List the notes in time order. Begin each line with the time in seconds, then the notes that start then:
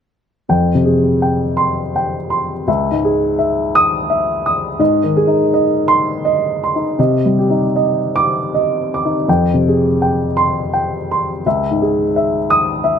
0.49 F2 G5
0.75 C3
0.85 G#4
1.22 G5
1.57 C6
1.96 G5
2.30 C6
2.68 C#2 E5
2.91 G#2
3.05 G#4
3.39 E5
3.75 D#6
4.10 E5
4.46 D#6
4.79 G#2 D#5
5.04 D#3
5.17 G#4
5.27 D#4
5.54 D#5
5.88 C6
6.25 D#5
6.64 C6
6.75 D#4
6.99 C3 D#5
7.25 G3
7.39 G4
7.50 D#4
7.76 D#5
8.16 D6
8.54 D#5
8.94 D6
9.05 D#4
9.28 F2 G5
9.54 C3
9.68 G#4
10.02 G5
10.37 C6
10.73 G5
11.11 C6
11.46 C#2 E5
11.71 G#2
11.82 G#4
12.16 E5
12.50 D#6
12.84 E5